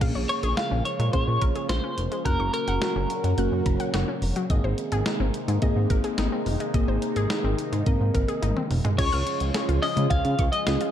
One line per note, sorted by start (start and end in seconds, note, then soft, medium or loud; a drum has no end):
0.01 0.12 A#1 loud
0.01 4.46 C#3 medium
0.01 2.23 F3 medium
0.01 2.23 G#3 medium
0.01 2.23 A#3 medium
0.01 0.78 A#3 medium
0.01 0.78 C#4 medium
0.01 2.23 F4 medium
0.01 0.78 G#4 medium
0.01 0.12 F5 loud
0.01 kick loud
0.01 closed hi-hat medium
0.01 crash medium
0.15 0.26 A#1 medium
0.15 0.26 C#5 medium
0.29 0.57 C#5 medium
0.29 closed hi-hat medium
0.43 0.54 A#1 medium
0.43 0.54 G#4 loud
0.43 closed hi-hat medium
0.57 0.68 F4 medium
0.57 0.85 F5 loud
0.57 snare loud
0.57 closed hi-hat medium
0.71 0.82 A#1 loud
0.71 0.82 C#4 medium
0.85 1.12 C#5 medium
0.85 closed hi-hat medium
0.99 1.10 A#2 loud
0.99 1.10 G#3 medium
0.99 closed hi-hat medium
1.13 1.24 A#1 loud
1.13 1.90 A#3 medium
1.13 1.90 C#4 medium
1.13 1.90 G#4 medium
1.13 1.69 C#5 loud
1.13 1.24 F5 medium
1.13 kick medium
1.13 closed hi-hat medium
1.27 1.38 A#2 loud
1.42 1.52 A#1 medium
1.42 1.52 A#4 medium
1.42 kick medium
1.42 closed hi-hat medium
1.55 1.66 G#4 medium
1.55 closed hi-hat medium
1.69 1.80 A#1 loud
1.69 1.80 F4 medium
1.69 2.25 C5 medium
1.69 snare loud
1.69 closed hi-hat medium
1.84 1.94 C#4 medium
1.98 2.08 F1 loud
1.98 closed hi-hat medium
2.12 2.22 G#3 medium
2.12 closed hi-hat medium
2.25 2.36 F#1 loud
2.25 4.48 A#2 medium
2.25 4.48 F#3 medium
2.25 3.02 A#3 medium
2.25 3.02 C#4 medium
2.25 4.48 C#4 medium
2.25 3.02 F#4 medium
2.25 4.48 F#4 medium
2.25 2.52 A#4 loud
2.25 2.36 F#6 loud
2.25 kick loud
2.25 closed hi-hat medium
2.40 2.50 F#1 loud
2.40 2.50 C#6 medium
2.54 4.18 A#4 medium
2.54 closed hi-hat medium
2.68 2.78 F#1 loud
2.68 2.78 F#5 loud
2.68 closed hi-hat medium
2.82 2.92 F#4 medium
2.82 snare loud
2.82 closed hi-hat medium
2.96 3.06 F#1 loud
2.96 3.06 C#4 medium
3.10 closed hi-hat medium
3.24 3.34 F#2 loud
3.24 3.34 F#3 medium
3.24 closed hi-hat medium
3.38 3.48 F#1 loud
3.38 4.14 A#3 medium
3.38 4.14 C#4 medium
3.38 4.14 F#4 loud
3.38 3.48 F#6 medium
3.38 closed hi-hat medium
3.52 3.62 F#2 loud
3.66 3.76 F#1 loud
3.66 3.76 A#5 medium
3.66 kick medium
3.66 closed hi-hat medium
3.80 3.90 F#5 medium
3.80 closed hi-hat medium
3.94 4.04 F#1 medium
3.94 4.04 F#4 medium
3.94 snare loud
3.94 closed hi-hat medium
4.08 4.18 C#4 medium
4.22 4.32 F1 medium
4.22 open hi-hat medium
4.36 4.46 F#3 medium
4.36 closed hi-hat medium
4.50 4.60 G#1 loud
4.50 8.95 C3 medium
4.50 8.95 D#3 medium
4.50 8.95 G#3 medium
4.50 5.26 A#3 medium
4.50 8.95 A#3 medium
4.50 5.26 C4 medium
4.50 8.95 D#4 medium
4.50 5.26 G#4 loud
4.50 4.60 D#5 loud
4.50 kick loud
4.50 closed hi-hat medium
4.64 4.74 G#1 loud
4.64 4.74 C5 medium
4.78 closed hi-hat medium
4.92 5.02 G#1 medium
4.92 5.02 G#4 loud
4.92 closed hi-hat medium
5.06 5.17 D#4 medium
5.06 snare loud
5.06 closed hi-hat medium
5.20 5.30 G#1 loud
5.20 5.31 C4 medium
5.34 closed hi-hat medium
5.48 5.58 G#2 loud
5.48 5.59 G#3 medium
5.48 closed hi-hat medium
5.62 5.73 G#1 loud
5.62 6.38 A#3 loud
5.62 6.38 C4 medium
5.62 6.38 G#4 loud
5.62 5.72 D#5 medium
5.62 kick medium
5.62 closed hi-hat medium
5.76 5.86 G#2 loud
5.90 6.01 G#1 medium
5.90 6.00 A#4 medium
5.90 kick medium
5.90 closed hi-hat medium
6.04 6.14 G#4 medium
6.04 closed hi-hat medium
6.18 6.29 G#1 loud
6.18 6.29 D#4 loud
6.18 snare loud
6.18 closed hi-hat medium
6.32 6.43 C4 medium
6.46 6.57 F1 loud
6.46 open hi-hat medium
6.60 6.71 G#3 medium
6.60 closed hi-hat medium
6.74 6.85 G#1 loud
6.74 7.50 A#3 medium
6.74 7.50 C4 medium
6.74 7.50 G#4 loud
6.74 6.85 D#5 loud
6.74 kick loud
6.74 closed hi-hat medium
6.88 6.98 G#1 loud
6.88 6.99 C5 medium
7.02 closed hi-hat medium
7.16 7.27 G#1 medium
7.16 7.27 G#4 loud
7.16 closed hi-hat medium
7.30 7.41 D#4 medium
7.30 snare loud
7.30 closed hi-hat medium
7.44 7.55 G#1 loud
7.44 7.55 C4 medium
7.58 closed hi-hat medium
7.72 7.83 G#2 medium
7.72 7.83 G#3 medium
7.72 closed hi-hat medium
7.86 7.97 G#1 loud
7.86 8.62 A#3 medium
7.86 8.62 C4 medium
7.86 8.62 A#4 loud
7.86 7.97 D#5 medium
7.86 kick medium
7.86 closed hi-hat medium
8.00 8.11 G#2 loud
8.14 8.25 G#1 loud
8.14 8.25 A#4 medium
8.14 kick medium
8.14 closed hi-hat medium
8.28 8.39 G#4 medium
8.28 closed hi-hat medium
8.42 8.53 G#1 loud
8.42 8.53 D#4 loud
8.42 closed hi-hat medium
8.42 high tom medium
8.56 8.67 C4 medium
8.56 mid tom medium
8.71 8.81 F1 loud
8.71 mid tom medium
8.71 open hi-hat medium
8.85 8.95 G#3 medium
8.85 closed hi-hat medium
8.85 floor tom medium
8.98 9.09 C#2 loud
8.98 10.91 C#3 medium
8.98 10.91 F3 medium
8.98 10.91 G#3 medium
8.98 9.75 C#4 medium
8.98 10.91 F4 medium
8.98 9.75 F4 medium
8.98 10.91 G#4 medium
8.98 9.75 G#4 medium
8.98 9.82 C#5 loud
8.98 9.09 G#6 loud
8.98 kick loud
8.98 closed hi-hat medium
8.98 crash loud
9.12 9.23 C#2 loud
9.12 9.23 F6 medium
9.12 closed hi-hat medium
9.27 closed hi-hat medium
9.40 9.51 C#2 medium
9.40 closed hi-hat medium
9.54 9.65 G#4 medium
9.54 snare loud
9.54 closed hi-hat medium
9.69 9.79 C#2 loud
9.69 9.79 F4 medium
9.69 closed hi-hat medium
9.83 9.93 C#4 medium
9.83 10.10 D#5 medium
9.83 open hi-hat medium
9.97 10.07 C#3 medium
9.97 10.07 G#3 medium
9.97 closed hi-hat medium
10.10 10.21 C#2 loud
10.10 10.52 F5 loud
10.10 10.21 G#6 medium
10.10 kick medium
10.10 closed hi-hat medium
10.25 10.35 C#3 medium
10.25 closed hi-hat soft
10.39 10.49 C#2 medium
10.39 10.49 C#6 medium
10.39 kick medium
10.39 closed hi-hat medium
10.52 10.91 D#5 loud
10.52 closed hi-hat medium
10.67 10.77 C#2 medium
10.67 10.91 C#4 medium
10.67 10.91 F4 medium
10.67 10.91 G#4 medium
10.67 10.77 G#4 loud
10.67 snare loud
10.67 closed hi-hat medium
10.81 10.91 F4 medium
10.81 closed hi-hat medium